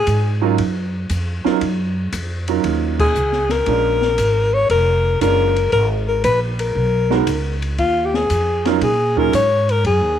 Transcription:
Already playing: alto saxophone G#4
0.07 upright bass G#2, kick, hi-hat pedal, ride
0.42 upright piano F#3 C#4 D#4 F4 A#4
0.58 upright bass F#2, kick, ride
1.10 upright bass F2, kick, hi-hat pedal, ride
1.44 upright piano F#3 C#4 D#4 F4 A#4, muted upright bass stroke, snare
1.61 upright bass F#2, kick, ride
2.12 upright bass F2, kick, hi-hat pedal, ride
2.48 upright piano F#3 C#4 D#4 F4 A#4, ride
2.64 upright bass D#2, kick, ride
2.99 alto saxophone G#4, kick, crash
3.15 upright bass C#2, hi-hat pedal
3.32 snare
3.49 alto saxophone A#4, snare, ride
3.66 upright bass A#1, upright piano G#3 C#4 D4 F4 A#4, kick, ride
4.02 snare
4.18 upright bass G#1, kick, hi-hat pedal, ride
4.54 alto saxophone C#5
4.69 upright bass F1, alto saxophone A#4, kick, ride
5.21 upright bass F#1, upright piano G#3 C#4 D4 F4 A#4, alto saxophone A#4, kick, hi-hat pedal, ride
5.56 ride
5.72 upright bass G#1, alto saxophone A#4, kick, ride
6.08 alto saxophone A#4
6.24 upright bass A#1, alto saxophone B4, kick, hi-hat pedal, ride
6.59 alto saxophone A#4, ride
6.75 upright bass B1, kick
7.10 upright piano G#3 B3 D#4 F#4 A#4, snare
7.27 upright bass C#2, kick, hi-hat pedal, ride
7.62 ride
7.78 upright bass D#2, alto saxophone F4, kick, ride
8.05 alto saxophone G4
8.14 alto saxophone G#4, snare
8.30 upright bass F2, kick, hi-hat pedal, ride
8.65 upright piano F#3 C#4 D#4 F4 A#4, snare, ride
8.81 upright bass A#2, alto saxophone G#4, kick, ride
9.16 upright piano F#3 C#4 D#4 F4 G#4, alto saxophone A#4, kick
9.33 upright bass G#2, alto saxophone C#5, kick, hi-hat pedal, ride
9.69 alto saxophone A#4, ride
9.85 upright bass F#2, alto saxophone G#4, kick, ride
10.01 upright bass D#2

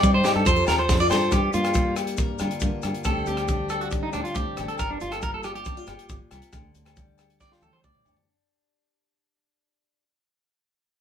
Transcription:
Already playing: steel-string acoustic guitar G2 D#4 G4, clean electric guitar D5
0.03 fingered electric bass G3, steel-string acoustic guitar C4, kick, maracas
0.14 clean electric guitar C5
0.23 steel-string acoustic guitar G3 D#4, clean electric guitar G4, snare, low agogo, maracas
0.36 fingered electric bass G2, clean electric guitar A4
0.45 fingered electric bass F2, steel-string acoustic guitar F3 G4, clean electric guitar C5, kick, maracas
0.56 steel-string acoustic guitar A4
0.67 fingered electric bass D#2, steel-string acoustic guitar A4, clean electric guitar A#4, snare, low agogo, maracas
0.79 clean electric guitar C5
0.89 fingered electric bass F2, steel-string acoustic guitar D4, kick, snare, maracas
1.00 steel-string acoustic guitar F4, clean electric guitar D5
1.10 fingered electric bass G2, steel-string acoustic guitar C4 A4, clean electric guitar C5, snare, low agogo, maracas
1.31 steel-string acoustic guitar G2, fingered electric bass G2, clean electric guitar G4, kick, cross-stick, closed hi-hat, low agogo, maracas
1.53 fingered electric bass G2, steel-string acoustic guitar A#3, clean electric guitar F4, closed hi-hat, maracas
1.64 cross-stick, closed hi-hat, low agogo
1.74 steel-string acoustic guitar G3 A#3, kick, closed hi-hat, maracas
1.96 cross-stick, closed hi-hat, low agogo, maracas
2.07 closed hi-hat
2.17 steel-string acoustic guitar A#4, kick, closed hi-hat, maracas
2.38 fingered electric bass G2, steel-string acoustic guitar D3 F4, cross-stick, closed hi-hat, low agogo, maracas
2.51 closed hi-hat
2.60 fingered electric bass G2, steel-string acoustic guitar A#3, kick, closed hi-hat, maracas
2.82 fingered electric bass G2, steel-string acoustic guitar F4, cross-stick, closed hi-hat, low agogo, maracas
2.94 closed hi-hat
3.04 fingered electric bass D2, steel-string acoustic guitar D3 G3, clean electric guitar A4, kick, cross-stick, closed hi-hat, low agogo, maracas
3.09 steel-string acoustic guitar C4 D4 G4
3.26 fingered electric bass D2, steel-string acoustic guitar C4, clean electric guitar G4, closed hi-hat, maracas
3.37 cross-stick, closed hi-hat, low agogo
3.48 steel-string acoustic guitar G3 D4, kick, closed hi-hat, maracas
3.69 clean electric guitar A4, cross-stick, closed hi-hat, low agogo, maracas
3.81 clean electric guitar F#4, closed hi-hat
3.91 steel-string acoustic guitar D4, muted clean electric guitar stroke, kick, closed hi-hat, maracas
4.03 clean electric guitar D#4
4.13 fingered electric bass D2, steel-string acoustic guitar A2 D4, clean electric guitar D4, cross-stick, closed hi-hat, low agogo, maracas
4.24 clean electric guitar F4, closed hi-hat
4.34 fingered electric bass D2, steel-string acoustic guitar C4, clean electric guitar G4, kick, closed hi-hat, maracas
4.57 fingered electric bass A1, steel-string acoustic guitar D4, cross-stick, closed hi-hat, low agogo, maracas
4.68 clean electric guitar A4, closed hi-hat
4.78 fingered electric bass G1, steel-string acoustic guitar G2, clean electric guitar A#4, kick, cross-stick, closed hi-hat, low agogo, maracas
4.90 clean electric guitar D4
5.00 fingered electric bass G1, steel-string acoustic guitar A#3, clean electric guitar F4, closed hi-hat, maracas
5.11 clean electric guitar A4, cross-stick, closed hi-hat, low agogo
5.21 steel-string acoustic guitar G3 F4, clean electric guitar A#4, kick, closed hi-hat, maracas
5.34 clean electric guitar A4
5.43 clean electric guitar G4, cross-stick, closed hi-hat, low agogo, maracas
5.55 clean electric guitar G4, closed hi-hat
5.65 steel-string acoustic guitar D4, kick, closed hi-hat, maracas
5.77 steel-string acoustic guitar F4
5.87 fingered electric bass G1, steel-string acoustic guitar F4, muted steel-string acoustic guitar stroke, cross-stick, closed hi-hat, low agogo, maracas
5.99 closed hi-hat
6.09 fingered electric bass G1, steel-string acoustic guitar A#2, kick, closed hi-hat, maracas
6.31 fingered electric bass C2, steel-string acoustic guitar C3, cross-stick, closed hi-hat, low agogo, maracas
6.42 closed hi-hat
6.52 fingered electric bass D2, steel-string acoustic guitar D3, kick, cross-stick, closed hi-hat, low agogo, maracas
6.75 fingered electric bass D2, muted steel-string acoustic guitar stroke, closed hi-hat, maracas
6.85 cross-stick, closed hi-hat, low agogo
6.96 steel-string acoustic guitar G3, kick, closed hi-hat, maracas
7.18 cross-stick, closed hi-hat, low agogo, maracas
7.30 closed hi-hat
7.40 steel-string acoustic guitar G4, clean electric guitar D5, kick, snare, maracas
7.52 clean electric guitar F4, snare
7.61 fingered electric bass D2, steel-string acoustic guitar A2 D4, clean electric guitar A4, high tom, low agogo, maracas
7.73 clean electric guitar C5, high tom
7.84 fingered electric bass D2, steel-string acoustic guitar C4, clean electric guitar D5, kick, mid tom, maracas
7.95 mid tom
8.05 fingered electric bass D2, steel-string acoustic guitar D4, floor tom, low agogo, maracas
8.17 floor tom

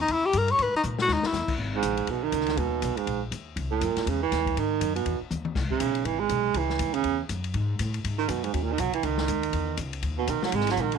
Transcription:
0.01 tenor saxophone D#4
0.08 upright bass D#2, kick, ride
0.12 tenor saxophone E4
0.26 tenor saxophone G4
0.33 upright bass G2, kick, hi-hat pedal, ride
0.38 tenor saxophone A#4
0.48 tenor saxophone C#5, ride
0.58 upright bass G#2, tenor saxophone B4, kick, ride
0.74 tenor saxophone D#4, muted upright bass stroke
0.83 upright bass A#2, hi-hat pedal
0.99 tenor saxophone F#4, snare
1.08 upright bass D#2, snare
1.13 tenor saxophone D#4
1.23 tenor saxophone E4, muted upright bass stroke, snare
1.33 upright bass E2, snare, hi-hat pedal
1.48 muted upright bass stroke, kick, crash
1.58 upright bass G#1
1.76 baritone saxophone G#2
1.83 upright bass A#1, kick, hi-hat pedal, ride
1.97 ride
2.07 upright bass B1, baritone saxophone B2, kick, ride
2.23 baritone saxophone D#3
2.32 upright bass C#2, kick, hi-hat pedal, ride
2.41 snare
2.46 snare, ride
2.57 upright bass D#2, baritone saxophone B2, kick, ride
2.82 upright bass B1, kick, hi-hat pedal, ride
2.97 baritone saxophone G#2, muted upright bass stroke, ride
3.06 upright bass A#1, kick, ride
3.31 upright bass D#2, kick, hi-hat pedal, ride
3.56 upright bass C#2, kick, ride
3.71 baritone saxophone A#2
3.81 upright bass F#2, kick, hi-hat pedal, ride
3.96 muted upright bass stroke, snare, ride
4.06 upright bass E2, baritone saxophone C#3, kick, ride
4.23 baritone saxophone E3
4.31 upright bass D#2, kick, snare, hi-hat pedal, ride
4.46 kick, ride
4.56 upright bass G#2, baritone saxophone D#3, kick, ride
4.81 upright bass F#2, kick, hi-hat pedal, ride
4.95 baritone saxophone B2, ride
5.06 upright bass E2, kick, ride
5.21 muted upright bass stroke
5.31 upright bass D#2, hi-hat pedal, high tom
5.45 high tom
5.55 upright bass C#2, kick, snare, crash
5.70 baritone saxophone C#3, muted upright bass stroke, kick
5.80 upright bass B1, kick, hi-hat pedal, ride
5.95 ride
6.05 upright bass G#1, baritone saxophone E3, kick, ride
6.20 baritone saxophone G#3
6.29 upright bass B1, kick, hi-hat pedal, ride
6.54 upright bass C#2, baritone saxophone E3, kick, ride
6.70 snare
6.79 upright bass D#2, kick, hi-hat pedal, ride
6.94 baritone saxophone C#3, ride
7.04 upright bass E2, kick, ride
7.29 upright bass F#2, kick, hi-hat pedal, ride
7.44 ride
7.54 upright bass G#2, kick, ride
7.79 upright bass A2, kick, hi-hat pedal, ride
7.94 ride
8.04 upright bass G#2, kick, ride
8.18 baritone saxophone D#3
8.29 upright bass F#2, baritone saxophone B2, kick, hi-hat pedal, ride
8.44 baritone saxophone G#2, ride
8.53 upright bass D#2, baritone saxophone F#2, kick, ride
8.62 baritone saxophone A#2
8.72 baritone saxophone D#3
8.78 upright bass B1, baritone saxophone F#3, kick, hi-hat pedal, ride
8.93 baritone saxophone E3, muted upright bass stroke, ride
9.03 upright bass C#2, baritone saxophone D#3, kick, ride
9.18 snare
9.28 upright bass D#2, kick, hi-hat pedal, ride
9.43 ride
9.53 upright bass E2, kick, ride
9.77 upright bass C#2, kick, hi-hat pedal, ride
9.93 ride
10.03 upright bass D#2, kick, ride
10.18 baritone saxophone B2
10.27 upright bass B1, baritone saxophone D#3, kick, hi-hat pedal, ride
10.43 baritone saxophone F#3, muted upright bass stroke, snare
10.52 upright bass G#1, baritone saxophone G#3, kick, ride
10.61 snare
10.67 baritone saxophone F#3, snare, ride
10.77 upright bass A#1, kick, hi-hat pedal
10.81 baritone saxophone D#3
10.92 baritone saxophone D3, ride

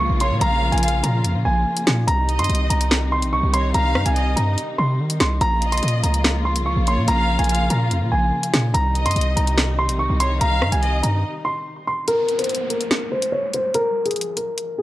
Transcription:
Already playing: string section C#3 F3 A#3 F4, downlifter
0.00 grand piano C#6
0.10 808-style bass A#1
0.20 violin section C#5, grand piano C6, closed hi-hat
0.31 808-style bass A#2
0.41 808-style bass A#1, violin section F5, grand piano A#5, closed hi-hat
0.72 808-style bass A#1, grand piano G#5, closed hi-hat
0.78 closed hi-hat
0.83 violin section F5, closed hi-hat
0.88 closed hi-hat
1.03 808-style bass A#2, grand piano A#5, closed hi-hat
1.24 808-style bass F2, closed hi-hat
1.35 808-style bass A#2
1.45 808-style bass A#1, grand piano G#5
1.77 closed hi-hat
1.87 808-style bass A#2, snare, closed hi-hat
2.07 808-style bass C2, string section C3 D#3 G3 D#4, grand piano A#5, closed hi-hat
2.29 violin section D#5, closed hi-hat
2.39 808-style bass G2, grand piano C6, closed hi-hat
2.44 closed hi-hat
2.49 808-style bass C2, closed hi-hat
2.55 closed hi-hat
2.70 808-style bass C2, grand piano A#5, closed hi-hat
2.81 closed hi-hat
2.91 snare
3.12 grand piano C6
3.22 808-style bass A#1, closed hi-hat
3.33 808-style bass C2, grand piano C#6
3.43 808-style bass C2
3.54 violin section C#5, grand piano C6, closed hi-hat
3.74 808-style bass C2, violin section F5, grand piano A#5, closed hi-hat
3.95 808-style bass G2, cross-stick
4.06 808-style bass C2, grand piano G#5, closed hi-hat
4.16 violin section D#5, closed hi-hat
4.36 808-style bass G2, grand piano A#5, closed hi-hat
4.58 closed hi-hat
4.78 808-style bass C3, grand piano C6
4.99 808-style bass D#3
5.10 closed hi-hat
5.20 808-style bass C2, grand piano C6, snare, closed hi-hat
5.41 808-style bass A#1, string section C#3 F3 A#3 F4, grand piano A#5, closed hi-hat
5.62 violin section D#5, closed hi-hat
5.72 grand piano C6, closed hi-hat
5.78 closed hi-hat
5.83 808-style bass A#2, closed hi-hat
5.88 closed hi-hat
6.03 808-style bass C#2, grand piano A#5, closed hi-hat
6.14 closed hi-hat
6.24 snare
6.45 grand piano C6
6.56 808-style bass C2, closed hi-hat
6.66 808-style bass C#2, grand piano C#6
6.76 808-style bass A#1
6.87 violin section C#5, grand piano C6, closed hi-hat
6.97 808-style bass A#2
7.08 808-style bass A#1, violin section F5, grand piano A#5, closed hi-hat
7.39 808-style bass A#1, grand piano G#5, closed hi-hat
7.44 closed hi-hat
7.49 violin section F5, closed hi-hat
7.55 closed hi-hat
7.70 808-style bass A#2, grand piano A#5, closed hi-hat
7.91 808-style bass F2, closed hi-hat
8.01 808-style bass A#2
8.12 808-style bass A#1, grand piano G#5
8.43 closed hi-hat
8.54 808-style bass A#2, snare, closed hi-hat
8.74 808-style bass C2, string section C3 D#3 G3 D#4, grand piano A#5, closed hi-hat
8.95 violin section D#5, closed hi-hat
9.06 808-style bass G2, grand piano C6, closed hi-hat
9.11 closed hi-hat
9.16 808-style bass C2, closed hi-hat
9.21 closed hi-hat
9.36 808-style bass C2, grand piano A#5, closed hi-hat
9.47 closed hi-hat
9.58 snare
9.79 grand piano C6
9.89 808-style bass A#1, closed hi-hat
9.99 808-style bass C2, grand piano C#6
10.10 808-style bass C2
10.20 violin section C#5, grand piano C6, closed hi-hat
10.41 808-style bass C2, violin section F5, grand piano A#5, closed hi-hat
10.62 808-style bass G2, cross-stick
10.72 808-style bass C2, grand piano G#5, closed hi-hat
10.83 violin section D#5, closed hi-hat
11.03 808-style bass G2, grand piano A#5, closed hi-hat
11.45 grand piano C6
11.87 grand piano C6
12.08 grand piano A#4, closed hi-hat, downlifter
12.29 closed hi-hat
12.39 grand piano C5, closed hi-hat
12.44 closed hi-hat
12.49 closed hi-hat
12.55 closed hi-hat
12.70 grand piano A#4, closed hi-hat
12.81 closed hi-hat
12.91 snare
13.12 grand piano C5
13.22 closed hi-hat
13.32 grand piano C#5
13.54 grand piano C5, closed hi-hat
13.74 grand piano A#4, closed hi-hat
14.05 grand piano G#4, closed hi-hat
14.11 closed hi-hat
14.16 closed hi-hat
14.21 closed hi-hat
14.37 grand piano A#4, closed hi-hat
14.58 closed hi-hat
14.78 grand piano G#4

